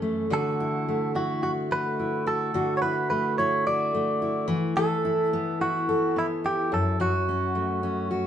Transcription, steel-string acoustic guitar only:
Already playing: F#2 E3 C#4 A4
0.02 A3
0.30 D3 F#4
0.60 E4
0.88 A3
1.15 E4
1.43 F#4
1.71 A3
1.99 E4
2.26 F#4
2.54 D3 F#4
2.82 E4
3.10 A3
3.39 E4
3.67 F#4
3.94 A3
4.22 E4
4.48 E3
4.77 E3 A4
5.05 E4
5.33 B3
5.61 E4
5.89 A4
6.16 B3
6.44 E4
6.72 F#2
7.00 F#2 F#4
7.29 C#4
7.55 A3
7.83 C#4
8.11 F#4

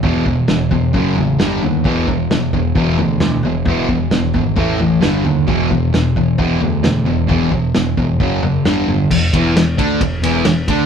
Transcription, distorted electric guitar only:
0.04 E2 B2 E3
0.26 E2 B2
0.48 E2 B2
0.71 E2 B2
0.93 F#2 C#3 F#3
1.17 F#2 C#3
1.39 G2 D3 G3
1.62 G2 D3
1.84 E2 B2 E3
2.08 E2 B2
2.31 E2 B2
2.54 E2 B2
2.75 E2 B2 E3
2.99 E2 B2
3.22 E2 B2
3.45 E2 B2
3.67 E2 B2 E3
3.89 E2 B2
4.12 E2 B2
4.34 E2 B2
4.56 A2 E3 A3
4.79 A2 E3
5.01 G2 D3 G3
5.24 G2 D3
5.47 E2 B2 E3
5.70 E2 B2
5.93 E2 B2
6.17 E2 B2
6.38 E2 B2 E3
6.61 E2 B2
6.84 E2 B2
7.06 E2 B2
7.28 E2 B2 E3
7.52 E2 B2
7.75 E2 B2
7.98 E2 B2
8.20 F#2 C#3 F#3
8.43 F#2 C#3
8.65 G2 D3 G3
8.88 G2 D3
9.11 E2
9.34 E2 E3
9.57 E2
9.78 D3 D4
10.02 E2
10.24 E2 E3
10.47 E2
10.69 D3 D4

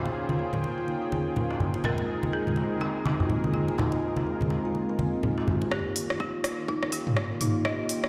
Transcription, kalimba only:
0.30 F4
0.39 A#3
0.54 A#4
0.63 A#3
0.78 F4
0.88 D#4
1.02 F4
1.12 D#4
1.36 A#4
1.75 F4
1.84 A#3
1.99 A#4
2.09 A#3
2.23 F4
2.33 D#4
2.47 F4
2.57 D#4
2.81 A#4
3.20 F4
3.30 A#3
3.44 A#4
3.54 A#3
3.68 F4
3.78 D#4
3.93 F4
4.02 D#4
4.27 A#4
4.65 F4
4.75 A#3
4.89 A#4
4.99 A#3
5.13 F4
5.23 D#4
5.38 F4
5.47 D#4
5.71 A#3
5.86 A#4
5.95 A#3
6.10 F4
6.19 D#4
6.34 F4
6.44 D#4
6.68 A#4
7.07 F4
7.16 A#3
7.31 A#4
7.41 A#3
7.55 F4
7.65 D#4
7.79 F4
7.90 D#4

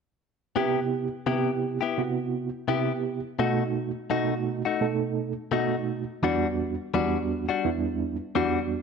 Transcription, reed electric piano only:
0.56 C3 B3 E4 G4
1.27 C3 B3 E4 G4
1.97 C3 B3 E4 F#4
2.69 C3 B3 E4 G4
3.39 B2 A3 D#4 F#4
4.10 B2 A3 D#4 F#4
4.81 B2 A3 D#4 A4
5.52 B2 A3 D#4 F#4
6.22 E2 G3 B3 D4 F#4
6.94 E2 G3 B3 D4 F#4
7.64 E2 G3 B3 D4 E4
8.35 E2 G3 B3 D4 F#4

